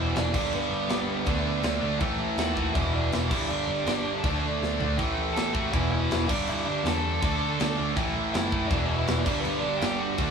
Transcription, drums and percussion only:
0.16 snare, crash
0.34 kick, crash
0.53 crash
0.89 snare, crash
1.26 kick, crash
1.63 snare, crash
2.00 kick, crash
2.38 snare, crash
2.57 kick
2.75 kick, crash
3.12 snare, crash
3.31 kick, crash
3.50 crash
3.87 snare, crash
4.24 kick, crash
4.63 snare
4.80 floor tom
4.99 kick, crash
5.36 snare, crash
5.55 kick
5.74 kick, crash
6.11 snare, crash
6.29 kick, crash
6.48 crash
6.86 snare, crash
7.22 kick, crash
7.60 snare, crash
7.97 kick, crash
8.34 snare, crash
8.52 kick
8.71 kick, crash
9.08 snare, crash
9.26 kick, crash
9.45 crash
9.81 snare, crash
10.18 kick, crash

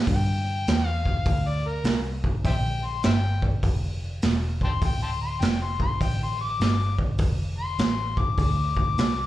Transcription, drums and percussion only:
0.07 kick, open hi-hat
0.67 snare, open hi-hat
1.05 kick
1.25 kick, open hi-hat
1.84 snare, open hi-hat
2.24 kick
2.45 kick, open hi-hat
3.03 snare, open hi-hat
3.42 kick
3.63 kick, open hi-hat
4.22 snare, open hi-hat
4.61 kick
4.82 kick, open hi-hat
5.42 snare, open hi-hat
5.80 kick
6.01 kick, open hi-hat
6.61 snare, open hi-hat
6.99 kick
7.18 kick, open hi-hat
7.78 snare, open hi-hat
8.17 kick
8.38 kick, open hi-hat
8.77 kick
8.98 snare, open hi-hat

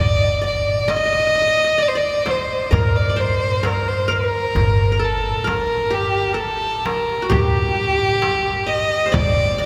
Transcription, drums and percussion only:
0.88 darbuka tek, frame drum
2.26 darbuka tek, frame drum
2.72 frame drum, darbuka dum
3.19 darbuka ka
3.63 darbuka tek, frame drum
3.87 darbuka ka
4.55 frame drum, darbuka dum
5.47 darbuka tek, frame drum
6.86 darbuka tek, frame drum
7.30 darbuka dum, frame drum
7.77 darbuka ka
8.22 darbuka tek, frame drum
8.46 darbuka ka
8.91 darbuka ka
9.14 darbuka dum, frame drum

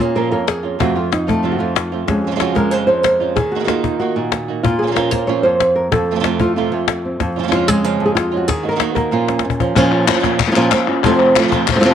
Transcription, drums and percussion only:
0.00 cajon bass
0.16 cajon slap
0.48 cajon slap
0.80 cajon bass
1.12 cajon slap
1.29 cajon bass
1.76 cajon slap
2.08 cajon bass, cajon slap
2.40 cajon slap
2.56 cajon bass
3.04 cajon slap
3.37 cajon bass
3.53 cajon slap
3.68 cajon slap
3.84 cajon bass
4.00 cajon slap
4.32 cajon slap
4.64 cajon bass
4.96 cajon slap
5.12 cajon bass
5.60 cajon slap
5.92 cajon bass
6.24 cajon slap
6.40 cajon bass
6.88 cajon slap
7.20 cajon bass, cajon slap
7.36 cajon slap
7.52 cajon slap
7.69 cajon bass
7.85 cajon slap
8.17 cajon slap
8.49 cajon bass, cajon slap
8.80 cajon slap
8.96 cajon bass
9.28 cajon slap
9.39 cajon slap
9.50 cajon bass
9.60 cajon bass
9.76 cajon bass
10.08 cajon slap, clap
10.24 cajon bass, clap
10.40 cajon bass, clap
10.56 clap
10.71 cajon slap, clap
10.87 cajon slap, clap
11.04 cajon bass
11.20 cajon slap
11.36 cajon slap, clap
11.52 cajon bass, clap
11.67 cajon bass, clap
11.83 clap

